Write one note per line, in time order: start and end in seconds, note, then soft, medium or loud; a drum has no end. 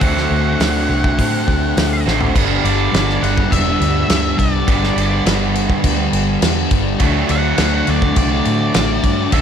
0.00 0.29 D2 medium
0.00 0.59 D3 loud
0.00 0.60 F#3 medium
0.00 0.30 A3 medium
0.00 0.61 A3 medium
0.00 1.18 C4 medium
0.00 2.05 C4 loud
0.00 0.62 D4 loud
0.00 2.05 F#4 medium
0.00 2.02 F#5 loud
0.00 kick loud
0.00 open hi-hat soft
0.17 snare soft
0.31 0.58 D2 medium
0.31 0.88 A3 medium
0.60 0.87 D2 medium
0.60 1.16 D3 medium
0.60 1.77 F#3 medium
0.60 1.17 A3 medium
0.60 1.19 D4 medium
0.60 snare loud
0.60 open hi-hat soft
0.89 1.17 C2 medium
0.89 1.48 A3 medium
1.04 kick medium
1.17 1.46 A2 medium
1.17 1.74 D3 medium
1.17 1.76 A3 loud
1.17 2.07 C4 medium
1.17 1.77 D4 loud
1.17 kick loud
1.17 open hi-hat medium
1.48 1.75 D2 medium
1.48 2.36 A3 medium
1.48 kick medium
1.76 2.04 D2 medium
1.76 2.33 D3 medium
1.76 2.36 F#3 medium
1.76 2.34 A3 medium
1.76 2.35 D4 medium
1.76 snare loud
1.76 open hi-hat medium
2.06 2.34 A1 medium
2.06 2.34 D3 medium
2.06 2.35 A3 medium
2.06 2.34 C4 medium
2.06 2.37 C4 medium
2.06 2.34 F#4 medium
2.06 snare medium
2.21 floor tom medium
2.34 2.58 G1 medium
2.34 2.92 G2 loud
2.34 2.65 D3 loud
2.34 2.63 G3 medium
2.34 4.67 B3 loud
2.34 4.68 D4 loud
2.34 kick loud
2.34 crash loud
2.34 crash medium
2.64 2.87 G1 medium
2.64 2.93 D3 medium
2.64 2.95 G3 medium
2.64 3.25 D5 medium
2.64 crash medium
2.92 3.16 G1 medium
2.92 4.08 G2 medium
2.92 3.22 D3 medium
2.92 3.20 G3 medium
2.92 snare loud
2.92 crash medium
3.09 snare soft
3.21 3.45 G1 medium
3.21 4.09 D3 medium
3.21 4.10 G3 medium
3.21 3.53 F#5 medium
3.21 crash medium
3.38 kick medium
3.52 3.75 E1 medium
3.52 4.39 E5 loud
3.52 kick medium
3.52 crash medium
3.81 4.04 D2 medium
3.81 crash medium
4.08 4.33 D2 medium
4.08 4.65 G2 medium
4.08 4.39 D3 medium
4.08 4.36 G3 medium
4.08 snare loud
4.08 crash medium
4.37 4.61 C2 loud
4.37 4.66 D3 medium
4.37 4.68 G3 medium
4.37 5.22 D5 medium
4.37 kick medium
4.37 crash medium
4.66 4.91 G1 loud
4.66 5.25 G2 medium
4.66 4.98 D3 medium
4.66 4.95 G3 loud
4.66 6.99 B3 loud
4.66 7.01 D4 loud
4.66 kick loud
4.66 crash medium
4.84 snare soft
4.96 5.19 G1 medium
4.96 5.26 D3 medium
4.96 5.27 G3 medium
4.96 crash medium
5.25 5.71 G1 medium
5.25 5.84 G2 medium
5.25 5.55 D3 medium
5.25 5.53 G3 medium
5.25 snare loud
5.25 crash medium
5.54 6.43 D3 medium
5.54 6.44 G3 medium
5.54 crash medium
5.70 kick medium
5.84 6.07 D2 medium
5.84 kick medium
5.84 crash medium
6.13 6.36 G1 medium
6.13 crash medium
6.42 6.65 E2 medium
6.42 6.99 G2 medium
6.42 6.73 D3 medium
6.42 6.70 G3 medium
6.42 snare loud
6.42 crash medium
6.71 6.94 G1 medium
6.71 7.00 D3 medium
6.71 6.99 G3 medium
6.71 kick medium
6.71 crash medium
7.00 7.23 D2 medium
7.00 7.58 D3 medium
7.00 9.31 F#3 loud
7.00 7.33 A3 loud
7.00 kick loud
7.00 crash medium
7.04 7.30 D4 loud
7.29 7.52 D2 medium
7.29 7.60 A3 medium
7.29 7.61 D4 medium
7.29 7.90 F#5 medium
7.29 crash medium
7.58 7.81 D2 medium
7.58 8.73 D3 medium
7.58 7.89 A3 medium
7.58 7.87 D4 medium
7.58 snare loud
7.58 crash medium
7.87 8.11 D2 medium
7.87 8.74 A3 medium
7.87 8.76 D4 medium
7.87 8.17 D5 medium
7.87 crash medium
8.02 kick medium
8.16 8.39 C2 medium
8.16 9.33 D5 medium
8.16 kick medium
8.16 crash medium
8.45 8.69 A2 medium
8.45 crash medium
8.73 8.98 A1 medium
8.73 9.31 D3 medium
8.73 9.04 A3 medium
8.73 9.02 D4 medium
8.73 snare loud
8.73 crash medium
9.03 9.26 G2 medium
9.03 9.33 A3 medium
9.03 9.35 D4 medium
9.03 kick medium
9.03 crash medium
9.32 9.41 D2 loud
9.32 9.41 D3 medium
9.32 9.41 F#3 medium
9.32 9.41 A3 medium
9.32 9.41 D4 loud
9.32 9.41 E5 medium
9.32 kick loud
9.32 crash medium